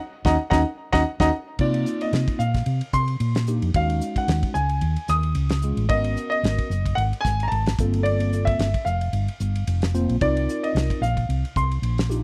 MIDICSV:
0, 0, Header, 1, 5, 480
1, 0, Start_track
1, 0, Key_signature, -3, "minor"
1, 0, Tempo, 538600
1, 1421, Time_signature, 4, 2, 24, 8
1, 10903, End_track
2, 0, Start_track
2, 0, Title_t, "Grand piano"
2, 0, Program_c, 0, 0
2, 228, Note_on_c, 0, 78, 74
2, 229, Note_on_c, 0, 75, 85
2, 229, Note_on_c, 0, 82, 83
2, 310, Note_off_c, 0, 75, 0
2, 310, Note_off_c, 0, 78, 0
2, 310, Note_off_c, 0, 82, 0
2, 446, Note_on_c, 0, 78, 77
2, 450, Note_on_c, 0, 75, 77
2, 450, Note_on_c, 0, 82, 90
2, 537, Note_off_c, 0, 78, 0
2, 539, Note_off_c, 0, 75, 0
2, 539, Note_off_c, 0, 82, 0
2, 824, Note_on_c, 0, 75, 97
2, 825, Note_on_c, 0, 78, 92
2, 826, Note_on_c, 0, 82, 90
2, 897, Note_off_c, 0, 75, 0
2, 898, Note_off_c, 0, 78, 0
2, 899, Note_off_c, 0, 82, 0
2, 1071, Note_on_c, 0, 75, 94
2, 1072, Note_on_c, 0, 78, 82
2, 1077, Note_on_c, 0, 82, 92
2, 1141, Note_off_c, 0, 75, 0
2, 1142, Note_off_c, 0, 78, 0
2, 1145, Note_off_c, 0, 82, 0
2, 1433, Note_on_c, 0, 74, 74
2, 1797, Note_on_c, 0, 75, 65
2, 1809, Note_off_c, 0, 74, 0
2, 2129, Note_on_c, 0, 77, 71
2, 2153, Note_off_c, 0, 75, 0
2, 2617, Note_on_c, 0, 84, 90
2, 2629, Note_off_c, 0, 77, 0
2, 3064, Note_off_c, 0, 84, 0
2, 3349, Note_on_c, 0, 77, 81
2, 3722, Note_on_c, 0, 78, 68
2, 3727, Note_off_c, 0, 77, 0
2, 4041, Note_off_c, 0, 78, 0
2, 4047, Note_on_c, 0, 80, 73
2, 4541, Note_on_c, 0, 87, 98
2, 4548, Note_off_c, 0, 80, 0
2, 4987, Note_off_c, 0, 87, 0
2, 5248, Note_on_c, 0, 75, 86
2, 5599, Note_off_c, 0, 75, 0
2, 5613, Note_on_c, 0, 75, 83
2, 6175, Note_off_c, 0, 75, 0
2, 6197, Note_on_c, 0, 78, 86
2, 6253, Note_off_c, 0, 78, 0
2, 6422, Note_on_c, 0, 80, 87
2, 6622, Note_on_c, 0, 82, 65
2, 6630, Note_off_c, 0, 80, 0
2, 6665, Note_on_c, 0, 81, 80
2, 6689, Note_off_c, 0, 82, 0
2, 7027, Note_off_c, 0, 81, 0
2, 7159, Note_on_c, 0, 74, 82
2, 7514, Note_off_c, 0, 74, 0
2, 7532, Note_on_c, 0, 76, 77
2, 7886, Note_on_c, 0, 77, 68
2, 7901, Note_off_c, 0, 76, 0
2, 8817, Note_off_c, 0, 77, 0
2, 9105, Note_on_c, 0, 74, 81
2, 9477, Note_on_c, 0, 75, 69
2, 9485, Note_off_c, 0, 74, 0
2, 9820, Note_on_c, 0, 77, 71
2, 9833, Note_off_c, 0, 75, 0
2, 10309, Note_on_c, 0, 84, 82
2, 10314, Note_off_c, 0, 77, 0
2, 10751, Note_off_c, 0, 84, 0
2, 10903, End_track
3, 0, Start_track
3, 0, Title_t, "Tine electric piano"
3, 0, Program_c, 1, 4
3, 225, Note_on_c, 1, 63, 84
3, 227, Note_on_c, 1, 66, 78
3, 230, Note_on_c, 1, 61, 78
3, 308, Note_off_c, 1, 63, 0
3, 309, Note_off_c, 1, 66, 0
3, 311, Note_off_c, 1, 61, 0
3, 466, Note_on_c, 1, 61, 95
3, 469, Note_on_c, 1, 66, 86
3, 470, Note_on_c, 1, 63, 91
3, 549, Note_off_c, 1, 61, 0
3, 550, Note_off_c, 1, 66, 0
3, 551, Note_off_c, 1, 63, 0
3, 835, Note_on_c, 1, 63, 81
3, 837, Note_on_c, 1, 61, 90
3, 837, Note_on_c, 1, 66, 86
3, 904, Note_off_c, 1, 63, 0
3, 905, Note_off_c, 1, 61, 0
3, 905, Note_off_c, 1, 66, 0
3, 1076, Note_on_c, 1, 63, 89
3, 1077, Note_on_c, 1, 61, 85
3, 1079, Note_on_c, 1, 66, 83
3, 1144, Note_off_c, 1, 63, 0
3, 1145, Note_off_c, 1, 61, 0
3, 1146, Note_off_c, 1, 66, 0
3, 1423, Note_on_c, 1, 58, 69
3, 1423, Note_on_c, 1, 63, 64
3, 1424, Note_on_c, 1, 60, 58
3, 1425, Note_on_c, 1, 65, 74
3, 2136, Note_off_c, 1, 58, 0
3, 2136, Note_off_c, 1, 63, 0
3, 2137, Note_off_c, 1, 60, 0
3, 2137, Note_off_c, 1, 65, 0
3, 3101, Note_on_c, 1, 62, 53
3, 3102, Note_on_c, 1, 67, 70
3, 3104, Note_on_c, 1, 58, 69
3, 3104, Note_on_c, 1, 63, 64
3, 3285, Note_off_c, 1, 62, 0
3, 3285, Note_off_c, 1, 67, 0
3, 3286, Note_off_c, 1, 58, 0
3, 3286, Note_off_c, 1, 63, 0
3, 3350, Note_on_c, 1, 56, 68
3, 3351, Note_on_c, 1, 61, 59
3, 3352, Note_on_c, 1, 63, 60
3, 3352, Note_on_c, 1, 66, 76
3, 4060, Note_off_c, 1, 56, 0
3, 4061, Note_off_c, 1, 61, 0
3, 4061, Note_off_c, 1, 63, 0
3, 4061, Note_off_c, 1, 66, 0
3, 5024, Note_on_c, 1, 56, 69
3, 5024, Note_on_c, 1, 61, 55
3, 5025, Note_on_c, 1, 68, 68
3, 5026, Note_on_c, 1, 65, 57
3, 5206, Note_off_c, 1, 56, 0
3, 5206, Note_off_c, 1, 61, 0
3, 5207, Note_off_c, 1, 65, 0
3, 5207, Note_off_c, 1, 68, 0
3, 5260, Note_on_c, 1, 59, 69
3, 5260, Note_on_c, 1, 66, 60
3, 5261, Note_on_c, 1, 61, 57
3, 5261, Note_on_c, 1, 70, 75
3, 5975, Note_off_c, 1, 59, 0
3, 5975, Note_off_c, 1, 66, 0
3, 5976, Note_off_c, 1, 61, 0
3, 5976, Note_off_c, 1, 70, 0
3, 6950, Note_on_c, 1, 60, 65
3, 6952, Note_on_c, 1, 58, 72
3, 6954, Note_on_c, 1, 69, 78
3, 6955, Note_on_c, 1, 65, 58
3, 7718, Note_off_c, 1, 60, 0
3, 7719, Note_off_c, 1, 58, 0
3, 7720, Note_off_c, 1, 65, 0
3, 7720, Note_off_c, 1, 69, 0
3, 8862, Note_on_c, 1, 58, 79
3, 8863, Note_on_c, 1, 60, 65
3, 8863, Note_on_c, 1, 65, 71
3, 8864, Note_on_c, 1, 72, 87
3, 9045, Note_off_c, 1, 58, 0
3, 9046, Note_off_c, 1, 60, 0
3, 9046, Note_off_c, 1, 65, 0
3, 9047, Note_off_c, 1, 72, 0
3, 9105, Note_on_c, 1, 70, 71
3, 9106, Note_on_c, 1, 60, 67
3, 9106, Note_on_c, 1, 63, 68
3, 9106, Note_on_c, 1, 65, 65
3, 9818, Note_off_c, 1, 60, 0
3, 9818, Note_off_c, 1, 63, 0
3, 9818, Note_off_c, 1, 65, 0
3, 9818, Note_off_c, 1, 70, 0
3, 10777, Note_on_c, 1, 62, 63
3, 10780, Note_on_c, 1, 63, 65
3, 10781, Note_on_c, 1, 65, 62
3, 10781, Note_on_c, 1, 67, 75
3, 10903, Note_off_c, 1, 62, 0
3, 10903, Note_off_c, 1, 63, 0
3, 10903, Note_off_c, 1, 65, 0
3, 10903, Note_off_c, 1, 67, 0
3, 10903, End_track
4, 0, Start_track
4, 0, Title_t, "Fingered electric bass"
4, 0, Program_c, 2, 33
4, 218, Note_on_c, 2, 39, 87
4, 317, Note_off_c, 2, 39, 0
4, 459, Note_on_c, 2, 39, 86
4, 558, Note_off_c, 2, 39, 0
4, 826, Note_on_c, 2, 39, 92
4, 910, Note_off_c, 2, 39, 0
4, 1068, Note_on_c, 2, 39, 75
4, 1151, Note_off_c, 2, 39, 0
4, 1415, Note_on_c, 2, 48, 74
4, 1641, Note_off_c, 2, 48, 0
4, 1896, Note_on_c, 2, 48, 87
4, 2020, Note_off_c, 2, 48, 0
4, 2130, Note_on_c, 2, 46, 75
4, 2358, Note_off_c, 2, 46, 0
4, 2372, Note_on_c, 2, 48, 72
4, 2498, Note_off_c, 2, 48, 0
4, 2614, Note_on_c, 2, 48, 69
4, 2839, Note_off_c, 2, 48, 0
4, 2853, Note_on_c, 2, 46, 75
4, 3201, Note_off_c, 2, 46, 0
4, 3226, Note_on_c, 2, 41, 69
4, 3329, Note_off_c, 2, 41, 0
4, 3338, Note_on_c, 2, 39, 72
4, 3562, Note_off_c, 2, 39, 0
4, 3814, Note_on_c, 2, 39, 92
4, 3938, Note_off_c, 2, 39, 0
4, 4053, Note_on_c, 2, 37, 64
4, 4279, Note_off_c, 2, 37, 0
4, 4290, Note_on_c, 2, 39, 72
4, 4416, Note_off_c, 2, 39, 0
4, 4533, Note_on_c, 2, 39, 73
4, 4759, Note_off_c, 2, 39, 0
4, 4768, Note_on_c, 2, 37, 74
4, 5118, Note_off_c, 2, 37, 0
4, 5140, Note_on_c, 2, 33, 71
4, 5246, Note_off_c, 2, 33, 0
4, 5255, Note_on_c, 2, 32, 76
4, 5480, Note_off_c, 2, 32, 0
4, 5733, Note_on_c, 2, 32, 89
4, 5858, Note_off_c, 2, 32, 0
4, 5970, Note_on_c, 2, 30, 72
4, 6198, Note_off_c, 2, 30, 0
4, 6213, Note_on_c, 2, 32, 84
4, 6338, Note_off_c, 2, 32, 0
4, 6457, Note_on_c, 2, 32, 74
4, 6682, Note_off_c, 2, 32, 0
4, 6698, Note_on_c, 2, 32, 80
4, 6922, Note_off_c, 2, 32, 0
4, 6937, Note_on_c, 2, 31, 99
4, 7623, Note_off_c, 2, 31, 0
4, 7656, Note_on_c, 2, 31, 85
4, 7780, Note_off_c, 2, 31, 0
4, 7893, Note_on_c, 2, 29, 69
4, 8120, Note_off_c, 2, 29, 0
4, 8134, Note_on_c, 2, 31, 72
4, 8259, Note_off_c, 2, 31, 0
4, 8379, Note_on_c, 2, 31, 72
4, 8602, Note_off_c, 2, 31, 0
4, 8621, Note_on_c, 2, 29, 73
4, 8966, Note_off_c, 2, 29, 0
4, 8995, Note_on_c, 2, 34, 71
4, 9094, Note_off_c, 2, 34, 0
4, 9101, Note_on_c, 2, 36, 83
4, 9324, Note_off_c, 2, 36, 0
4, 9579, Note_on_c, 2, 36, 97
4, 9701, Note_off_c, 2, 36, 0
4, 9815, Note_on_c, 2, 34, 77
4, 10040, Note_off_c, 2, 34, 0
4, 10060, Note_on_c, 2, 36, 79
4, 10182, Note_off_c, 2, 36, 0
4, 10302, Note_on_c, 2, 36, 74
4, 10523, Note_off_c, 2, 36, 0
4, 10535, Note_on_c, 2, 34, 73
4, 10882, Note_off_c, 2, 34, 0
4, 10903, End_track
5, 0, Start_track
5, 0, Title_t, "Drums"
5, 221, Note_on_c, 9, 36, 87
5, 229, Note_on_c, 9, 38, 80
5, 310, Note_off_c, 9, 36, 0
5, 318, Note_off_c, 9, 38, 0
5, 459, Note_on_c, 9, 36, 77
5, 464, Note_on_c, 9, 38, 76
5, 548, Note_off_c, 9, 36, 0
5, 553, Note_off_c, 9, 38, 0
5, 829, Note_on_c, 9, 36, 78
5, 835, Note_on_c, 9, 38, 81
5, 918, Note_off_c, 9, 36, 0
5, 924, Note_off_c, 9, 38, 0
5, 1068, Note_on_c, 9, 36, 82
5, 1074, Note_on_c, 9, 38, 87
5, 1158, Note_off_c, 9, 36, 0
5, 1163, Note_off_c, 9, 38, 0
5, 1413, Note_on_c, 9, 49, 78
5, 1417, Note_on_c, 9, 36, 83
5, 1502, Note_off_c, 9, 49, 0
5, 1506, Note_off_c, 9, 36, 0
5, 1551, Note_on_c, 9, 51, 56
5, 1640, Note_off_c, 9, 51, 0
5, 1659, Note_on_c, 9, 44, 73
5, 1748, Note_off_c, 9, 44, 0
5, 1791, Note_on_c, 9, 51, 57
5, 1880, Note_off_c, 9, 51, 0
5, 1897, Note_on_c, 9, 51, 63
5, 1907, Note_on_c, 9, 38, 84
5, 1986, Note_off_c, 9, 51, 0
5, 1996, Note_off_c, 9, 38, 0
5, 2029, Note_on_c, 9, 36, 75
5, 2034, Note_on_c, 9, 51, 51
5, 2119, Note_off_c, 9, 36, 0
5, 2123, Note_off_c, 9, 51, 0
5, 2137, Note_on_c, 9, 44, 79
5, 2226, Note_off_c, 9, 44, 0
5, 2268, Note_on_c, 9, 36, 63
5, 2268, Note_on_c, 9, 51, 52
5, 2278, Note_on_c, 9, 38, 26
5, 2357, Note_off_c, 9, 36, 0
5, 2358, Note_off_c, 9, 51, 0
5, 2367, Note_off_c, 9, 38, 0
5, 2371, Note_on_c, 9, 51, 67
5, 2460, Note_off_c, 9, 51, 0
5, 2505, Note_on_c, 9, 51, 55
5, 2594, Note_off_c, 9, 51, 0
5, 2612, Note_on_c, 9, 44, 69
5, 2614, Note_on_c, 9, 36, 58
5, 2701, Note_off_c, 9, 44, 0
5, 2704, Note_off_c, 9, 36, 0
5, 2742, Note_on_c, 9, 51, 51
5, 2831, Note_off_c, 9, 51, 0
5, 2853, Note_on_c, 9, 51, 72
5, 2942, Note_off_c, 9, 51, 0
5, 2984, Note_on_c, 9, 51, 53
5, 2994, Note_on_c, 9, 38, 90
5, 3074, Note_off_c, 9, 51, 0
5, 3083, Note_off_c, 9, 38, 0
5, 3092, Note_on_c, 9, 44, 78
5, 3181, Note_off_c, 9, 44, 0
5, 3228, Note_on_c, 9, 51, 55
5, 3317, Note_off_c, 9, 51, 0
5, 3336, Note_on_c, 9, 51, 73
5, 3337, Note_on_c, 9, 36, 92
5, 3425, Note_off_c, 9, 51, 0
5, 3426, Note_off_c, 9, 36, 0
5, 3473, Note_on_c, 9, 51, 58
5, 3562, Note_off_c, 9, 51, 0
5, 3576, Note_on_c, 9, 44, 77
5, 3665, Note_off_c, 9, 44, 0
5, 3707, Note_on_c, 9, 36, 66
5, 3709, Note_on_c, 9, 51, 59
5, 3796, Note_off_c, 9, 36, 0
5, 3798, Note_off_c, 9, 51, 0
5, 3816, Note_on_c, 9, 51, 73
5, 3826, Note_on_c, 9, 38, 98
5, 3905, Note_off_c, 9, 51, 0
5, 3915, Note_off_c, 9, 38, 0
5, 3947, Note_on_c, 9, 36, 77
5, 3948, Note_on_c, 9, 51, 53
5, 4036, Note_off_c, 9, 36, 0
5, 4037, Note_off_c, 9, 51, 0
5, 4053, Note_on_c, 9, 44, 77
5, 4142, Note_off_c, 9, 44, 0
5, 4183, Note_on_c, 9, 51, 54
5, 4272, Note_off_c, 9, 51, 0
5, 4289, Note_on_c, 9, 51, 68
5, 4378, Note_off_c, 9, 51, 0
5, 4424, Note_on_c, 9, 51, 50
5, 4513, Note_off_c, 9, 51, 0
5, 4529, Note_on_c, 9, 44, 71
5, 4538, Note_on_c, 9, 38, 24
5, 4618, Note_off_c, 9, 44, 0
5, 4628, Note_off_c, 9, 38, 0
5, 4662, Note_on_c, 9, 51, 46
5, 4751, Note_off_c, 9, 51, 0
5, 4766, Note_on_c, 9, 51, 73
5, 4855, Note_off_c, 9, 51, 0
5, 4896, Note_on_c, 9, 51, 50
5, 4906, Note_on_c, 9, 38, 84
5, 4986, Note_off_c, 9, 51, 0
5, 4995, Note_off_c, 9, 38, 0
5, 5007, Note_on_c, 9, 44, 71
5, 5096, Note_off_c, 9, 44, 0
5, 5144, Note_on_c, 9, 51, 51
5, 5233, Note_off_c, 9, 51, 0
5, 5252, Note_on_c, 9, 51, 71
5, 5254, Note_on_c, 9, 36, 94
5, 5341, Note_off_c, 9, 51, 0
5, 5343, Note_off_c, 9, 36, 0
5, 5386, Note_on_c, 9, 51, 53
5, 5475, Note_off_c, 9, 51, 0
5, 5496, Note_on_c, 9, 44, 77
5, 5586, Note_off_c, 9, 44, 0
5, 5630, Note_on_c, 9, 51, 47
5, 5720, Note_off_c, 9, 51, 0
5, 5741, Note_on_c, 9, 51, 68
5, 5751, Note_on_c, 9, 38, 94
5, 5830, Note_off_c, 9, 51, 0
5, 5840, Note_off_c, 9, 38, 0
5, 5869, Note_on_c, 9, 36, 69
5, 5869, Note_on_c, 9, 51, 54
5, 5958, Note_off_c, 9, 36, 0
5, 5958, Note_off_c, 9, 51, 0
5, 5980, Note_on_c, 9, 44, 75
5, 6069, Note_off_c, 9, 44, 0
5, 6110, Note_on_c, 9, 36, 56
5, 6113, Note_on_c, 9, 51, 56
5, 6199, Note_off_c, 9, 36, 0
5, 6202, Note_off_c, 9, 51, 0
5, 6220, Note_on_c, 9, 51, 68
5, 6310, Note_off_c, 9, 51, 0
5, 6354, Note_on_c, 9, 51, 53
5, 6443, Note_off_c, 9, 51, 0
5, 6459, Note_on_c, 9, 36, 65
5, 6461, Note_on_c, 9, 44, 68
5, 6471, Note_on_c, 9, 38, 27
5, 6548, Note_off_c, 9, 36, 0
5, 6550, Note_off_c, 9, 44, 0
5, 6560, Note_off_c, 9, 38, 0
5, 6594, Note_on_c, 9, 51, 50
5, 6683, Note_off_c, 9, 51, 0
5, 6699, Note_on_c, 9, 51, 71
5, 6788, Note_off_c, 9, 51, 0
5, 6830, Note_on_c, 9, 51, 52
5, 6839, Note_on_c, 9, 38, 90
5, 6919, Note_off_c, 9, 51, 0
5, 6929, Note_off_c, 9, 38, 0
5, 6937, Note_on_c, 9, 44, 70
5, 6939, Note_on_c, 9, 36, 92
5, 7026, Note_off_c, 9, 44, 0
5, 7028, Note_off_c, 9, 36, 0
5, 7072, Note_on_c, 9, 51, 60
5, 7162, Note_off_c, 9, 51, 0
5, 7179, Note_on_c, 9, 51, 70
5, 7268, Note_off_c, 9, 51, 0
5, 7310, Note_on_c, 9, 51, 64
5, 7399, Note_off_c, 9, 51, 0
5, 7419, Note_on_c, 9, 44, 84
5, 7508, Note_off_c, 9, 44, 0
5, 7551, Note_on_c, 9, 36, 74
5, 7551, Note_on_c, 9, 51, 58
5, 7640, Note_off_c, 9, 36, 0
5, 7640, Note_off_c, 9, 51, 0
5, 7659, Note_on_c, 9, 51, 75
5, 7669, Note_on_c, 9, 38, 94
5, 7748, Note_off_c, 9, 51, 0
5, 7758, Note_off_c, 9, 38, 0
5, 7790, Note_on_c, 9, 51, 54
5, 7792, Note_on_c, 9, 36, 71
5, 7879, Note_off_c, 9, 51, 0
5, 7881, Note_off_c, 9, 36, 0
5, 7898, Note_on_c, 9, 44, 69
5, 7987, Note_off_c, 9, 44, 0
5, 8031, Note_on_c, 9, 51, 54
5, 8120, Note_off_c, 9, 51, 0
5, 8137, Note_on_c, 9, 51, 64
5, 8226, Note_off_c, 9, 51, 0
5, 8273, Note_on_c, 9, 51, 52
5, 8362, Note_off_c, 9, 51, 0
5, 8378, Note_on_c, 9, 44, 67
5, 8467, Note_off_c, 9, 44, 0
5, 8516, Note_on_c, 9, 51, 51
5, 8605, Note_off_c, 9, 51, 0
5, 8621, Note_on_c, 9, 51, 76
5, 8710, Note_off_c, 9, 51, 0
5, 8751, Note_on_c, 9, 51, 52
5, 8760, Note_on_c, 9, 38, 89
5, 8840, Note_off_c, 9, 51, 0
5, 8849, Note_off_c, 9, 38, 0
5, 8862, Note_on_c, 9, 44, 75
5, 8951, Note_off_c, 9, 44, 0
5, 8996, Note_on_c, 9, 51, 51
5, 9085, Note_off_c, 9, 51, 0
5, 9101, Note_on_c, 9, 51, 68
5, 9102, Note_on_c, 9, 36, 85
5, 9190, Note_off_c, 9, 51, 0
5, 9191, Note_off_c, 9, 36, 0
5, 9240, Note_on_c, 9, 51, 58
5, 9329, Note_off_c, 9, 51, 0
5, 9349, Note_on_c, 9, 44, 78
5, 9439, Note_off_c, 9, 44, 0
5, 9481, Note_on_c, 9, 51, 54
5, 9570, Note_off_c, 9, 51, 0
5, 9589, Note_on_c, 9, 51, 63
5, 9599, Note_on_c, 9, 38, 86
5, 9678, Note_off_c, 9, 51, 0
5, 9688, Note_off_c, 9, 38, 0
5, 9716, Note_on_c, 9, 36, 76
5, 9722, Note_on_c, 9, 51, 53
5, 9805, Note_off_c, 9, 36, 0
5, 9811, Note_off_c, 9, 51, 0
5, 9830, Note_on_c, 9, 44, 74
5, 9919, Note_off_c, 9, 44, 0
5, 9954, Note_on_c, 9, 36, 59
5, 9958, Note_on_c, 9, 51, 49
5, 10043, Note_off_c, 9, 36, 0
5, 10047, Note_off_c, 9, 51, 0
5, 10069, Note_on_c, 9, 51, 66
5, 10158, Note_off_c, 9, 51, 0
5, 10203, Note_on_c, 9, 51, 48
5, 10293, Note_off_c, 9, 51, 0
5, 10304, Note_on_c, 9, 36, 65
5, 10307, Note_on_c, 9, 44, 68
5, 10393, Note_off_c, 9, 36, 0
5, 10396, Note_off_c, 9, 44, 0
5, 10440, Note_on_c, 9, 51, 55
5, 10529, Note_off_c, 9, 51, 0
5, 10545, Note_on_c, 9, 51, 76
5, 10634, Note_off_c, 9, 51, 0
5, 10678, Note_on_c, 9, 51, 51
5, 10688, Note_on_c, 9, 38, 91
5, 10767, Note_off_c, 9, 51, 0
5, 10777, Note_off_c, 9, 38, 0
5, 10789, Note_on_c, 9, 44, 81
5, 10878, Note_off_c, 9, 44, 0
5, 10903, End_track
0, 0, End_of_file